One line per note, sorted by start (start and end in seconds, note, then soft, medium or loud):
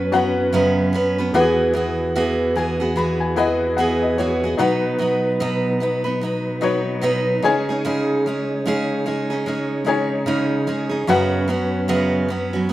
0.00 1.31 F#2 medium
0.00 0.11 F#3 medium
0.00 1.32 F#3 medium
0.00 0.12 B3 medium
0.00 0.12 C#4 medium
0.00 0.13 C#4 medium
0.00 1.32 C#4 medium
0.00 0.12 F#4 medium
0.00 0.13 B4 medium
0.00 0.14 B4 medium
0.00 1.32 B4 medium
0.12 0.53 F#3 medium
0.12 0.52 B3 medium
0.12 1.29 C#4 medium
0.12 0.53 C#4 medium
0.12 1.29 F#4 medium
0.12 1.29 B4 medium
0.12 0.53 B4 medium
0.12 1.30 F#5 medium
0.53 0.93 F#2 medium
0.53 0.93 C#3 medium
0.53 0.92 F#3 medium
0.53 0.93 B3 medium
0.53 0.94 C#4 medium
0.53 0.94 B4 medium
0.93 1.17 F#3 medium
0.93 1.18 B3 medium
0.93 1.18 C#4 medium
0.93 1.17 B4 medium
1.18 1.34 F#3 soft
1.18 1.33 B3 medium
1.18 1.35 C#4 medium
1.18 1.34 B4 medium
1.33 4.55 E2 medium
1.33 4.56 E3 medium
1.33 1.72 E3 medium
1.33 1.74 B3 medium
1.33 2.89 E4 medium
1.33 4.56 F#4 medium
1.33 1.75 F#4 medium
1.33 1.42 G4 medium
1.33 4.55 G#4 medium
1.33 1.76 G#4 medium
1.33 2.90 B4 medium
1.33 2.90 F#5 medium
1.41 2.93 G#4 medium
1.74 2.14 E3 medium
1.74 2.15 B3 medium
1.74 2.15 F#4 medium
1.74 2.16 G#4 medium
2.16 2.54 E3 medium
2.16 2.56 B3 medium
2.16 2.56 F#4 medium
2.16 2.57 G#4 medium
2.56 2.80 E3 medium
2.56 2.81 B3 medium
2.56 2.80 F#4 medium
2.56 2.79 G#4 medium
2.56 2.94 G#5 medium
2.80 2.96 B3 soft
2.80 2.96 F#4 medium
2.80 2.96 G#4 medium
2.96 3.35 E3 medium
2.96 3.36 B3 medium
2.96 3.37 F#4 medium
2.96 3.38 G#4 medium
2.96 3.19 B5 medium
3.20 3.36 G#5 medium
3.36 3.77 E3 medium
3.36 3.77 B3 medium
3.36 4.53 E4 medium
3.36 3.78 F#4 medium
3.36 4.53 G#4 medium
3.36 3.79 G#4 medium
3.36 4.54 B4 medium
3.36 4.01 D#5 medium
3.36 3.75 F#5 medium
3.77 4.17 E3 medium
3.77 4.18 B3 medium
3.77 4.19 F#4 medium
3.77 4.20 G#4 medium
3.77 4.00 F#5 medium
4.02 4.17 D#5 medium
4.18 4.43 E3 medium
4.18 4.43 B3 medium
4.18 4.44 F#4 medium
4.18 4.42 G#4 medium
4.18 4.56 C#5 medium
4.44 4.58 B3 soft
4.44 4.60 F#4 medium
4.44 4.59 G#4 medium
4.57 4.99 B2 medium
4.57 7.40 B2 medium
4.57 4.97 F#3 medium
4.57 7.41 F#3 medium
4.57 4.98 B3 medium
4.57 6.14 D#4 medium
4.57 11.04 D#4 medium
4.57 4.99 D#4 medium
4.57 6.14 F#4 medium
4.57 6.14 B4 medium
4.57 7.40 B4 medium
4.57 5.00 B4 medium
4.57 6.14 F#5 medium
4.99 5.39 F#3 medium
4.99 5.39 B3 medium
4.99 5.41 D#4 medium
4.99 5.40 B4 medium
5.40 5.81 B2 medium
5.40 5.79 F#3 medium
5.40 5.80 B3 medium
5.40 5.81 D#4 medium
5.40 5.81 B4 medium
5.80 6.05 F#3 medium
5.80 6.05 B3 medium
5.80 6.04 D#4 medium
5.80 6.03 B4 medium
6.04 6.21 B3 soft
6.04 6.22 D#4 medium
6.04 6.21 B4 medium
6.21 6.60 F#3 medium
6.21 6.61 B3 medium
6.21 6.61 D#4 medium
6.21 6.62 B4 medium
6.61 7.01 F#3 medium
6.61 7.02 B3 medium
6.61 7.42 D#4 medium
6.61 7.02 D#4 medium
6.61 7.43 F#4 medium
6.61 7.44 B4 medium
6.61 7.03 B4 medium
6.61 7.43 C#5 medium
7.01 7.43 B2 medium
7.01 7.42 F#3 medium
7.01 7.43 B3 medium
7.01 7.43 D#4 medium
7.01 7.44 B4 medium
7.42 11.04 C#3 medium
7.42 7.67 G#3 medium
7.42 11.04 G#3 medium
7.42 7.68 C#4 medium
7.42 8.98 D#4 medium
7.42 7.68 D#4 medium
7.42 8.99 G#4 medium
7.42 7.68 G#4 medium
7.42 11.05 C#5 medium
7.42 8.99 C#5 medium
7.42 8.99 G#5 loud
7.69 7.84 C#4 soft
7.69 7.84 D#4 medium
7.69 7.84 G#4 medium
7.85 8.25 C#3 medium
7.85 8.25 G#3 medium
7.85 8.25 C#4 medium
7.85 8.25 D#4 medium
7.85 8.26 G#4 medium
8.26 8.65 G#3 medium
8.26 8.66 C#4 medium
8.26 8.66 D#4 medium
8.26 8.67 G#4 medium
8.66 9.06 C#3 medium
8.66 9.04 G#3 medium
8.66 9.05 C#4 medium
8.66 9.06 D#4 medium
8.66 9.07 G#4 loud
9.06 9.30 G#3 medium
9.06 9.30 C#4 medium
9.06 9.30 D#4 medium
9.06 9.29 G#4 medium
9.30 9.46 C#4 medium
9.30 9.47 D#4 medium
9.30 9.46 G#4 medium
9.46 9.83 G#3 medium
9.46 9.85 C#4 medium
9.46 9.85 D#4 medium
9.46 9.86 G#4 medium
9.85 10.26 G#3 medium
9.85 10.27 C#4 medium
9.85 11.03 D#4 medium
9.85 10.27 D#4 medium
9.85 11.03 G#4 medium
9.85 10.26 G#4 medium
9.85 11.04 C#5 medium
9.85 11.04 G#5 medium
10.26 10.67 C#3 medium
10.26 10.66 G#3 medium
10.26 10.66 C#4 medium
10.26 10.68 D#4 medium
10.26 10.68 G#4 medium
10.67 10.92 G#3 medium
10.67 10.91 C#4 medium
10.67 10.90 D#4 medium
10.67 10.88 G#4 medium
10.89 11.08 C#4 medium
10.89 11.08 D#4 medium
10.89 11.07 G#4 medium
11.07 11.48 F#2 medium
11.07 12.73 F#2 medium
11.07 11.48 C#3 medium
11.07 11.46 F#3 medium
11.07 12.73 F#3 medium
11.07 11.48 B3 medium
11.07 12.63 C#4 medium
11.07 12.73 C#4 medium
11.07 11.48 C#4 medium
11.07 12.63 F#4 medium
11.07 11.49 F#4 medium
11.07 12.73 B4 medium
11.07 12.64 B4 medium
11.07 12.64 F#5 medium
11.48 11.88 F#3 medium
11.48 11.88 B3 medium
11.48 11.88 C#4 medium
11.48 11.88 F#4 medium
11.88 12.29 F#2 medium
11.88 12.29 C#3 medium
11.88 12.27 F#3 medium
11.88 12.29 B3 medium
11.88 12.29 C#4 medium
11.88 12.30 F#4 loud
12.28 12.53 F#3 medium
12.28 12.54 B3 medium
12.28 12.52 C#4 medium
12.28 12.52 F#4 medium
12.53 12.68 F#3 medium
12.53 12.68 B3 soft
12.53 12.70 C#4 medium
12.53 12.70 F#4 medium
12.69 12.73 F#3 medium
12.69 12.73 B3 medium